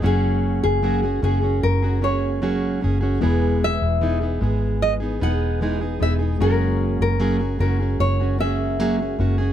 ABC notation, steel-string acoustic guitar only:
X:1
M:4/4
L:1/16
Q:1/4=75
K:F#mix
V:1 name="Steel-string acoustic guitar"
[F,A,CFG]4 [F,A,CFG] [CFG] [A,CFG] [CFG]2 [CFG] [A,CFG]2 [F,A,CFG]2 [A,CFG] [CFG] | [E,G,B,G]4 [E,G,B,DG] [B,DG] [G,B,G]3 [B,DG] [G,B,DG]2 [E,G,B,DG] [B,DG] [G,B,DG] [B,DG] | [F,A,CFG]4 [F,A,CFG] [CFG] [A,CFG] [CFG]2 [CFG] [A,CFG]2 [F,A,CFG] [CFG] [A,CFG] [CFG] |]